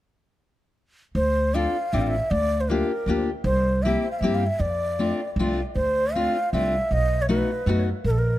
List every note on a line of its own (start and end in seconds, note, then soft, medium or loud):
1.15 1.65 D2 medium
1.15 1.56 C5 medium
1.54 1.75 C4 medium
1.54 1.75 D4 medium
1.54 1.76 F4 soft
1.54 1.76 A4 medium
1.54 1.95 F5 medium
1.93 2.18 A1 medium
1.93 2.14 C4 medium
1.93 2.14 D4 medium
1.93 2.14 F4 soft
1.93 2.14 A4 medium
1.93 2.02 E5 medium
2.01 2.09 F5 medium
2.08 2.32 E5 medium
2.31 2.81 D2 medium
2.31 2.62 D5 loud
2.61 2.71 C5 medium
2.69 2.90 A#3 soft
2.69 2.90 D4 medium
2.69 2.91 F4 soft
2.69 2.91 G4 medium
2.69 3.28 A#4 medium
3.06 3.32 D2 medium
3.06 3.28 A#3 medium
3.06 3.29 D4 soft
3.06 3.29 F4 medium
3.06 3.29 G4 medium
3.44 3.94 C2 medium
3.44 3.84 C5 loud
3.83 4.05 A#3 medium
3.83 4.05 C4 medium
3.83 4.05 E4 medium
3.83 4.05 G4 medium
3.83 4.11 E5 medium
4.11 4.21 F5 medium
4.19 4.46 G2 medium
4.19 4.43 A#3 medium
4.19 4.36 E5 medium
4.23 4.43 C4 medium
4.23 4.43 E4 medium
4.23 4.43 G4 medium
4.35 4.48 F5 medium
4.47 4.62 E5 medium
4.60 5.10 F2 medium
4.60 5.30 D5 medium
4.99 5.19 A3 medium
4.99 5.20 C4 medium
4.99 5.20 D4 soft
4.99 5.20 F4 medium
5.36 5.62 C2 medium
5.36 5.59 A3 medium
5.36 5.59 C4 medium
5.40 5.59 D4 medium
5.40 5.60 F4 medium
5.75 6.26 D2 medium
5.75 6.15 C5 medium
6.14 6.36 A3 soft
6.14 6.36 C4 soft
6.14 6.36 D4 soft
6.14 6.36 F4 medium
6.14 6.52 F5 medium
6.53 6.78 C2 medium
6.53 6.74 A3 medium
6.53 6.74 C4 soft
6.53 6.74 D4 medium
6.53 6.74 F4 medium
6.53 6.94 E5 medium
6.91 7.40 B1 medium
6.91 7.23 D#5 loud
7.22 7.29 C#5 medium
7.29 7.49 A3 medium
7.29 7.50 B3 soft
7.29 7.50 D#4 medium
7.29 7.50 F#4 medium
7.29 7.84 B4 medium
7.66 7.91 F#2 medium
7.66 7.87 A3 medium
7.66 7.88 B3 medium
7.66 7.88 D#4 medium
7.66 7.88 F#4 medium
8.04 8.39 A#1 medium
8.04 8.12 A#4 loud
8.11 8.20 A4 medium
8.18 8.39 A#4 medium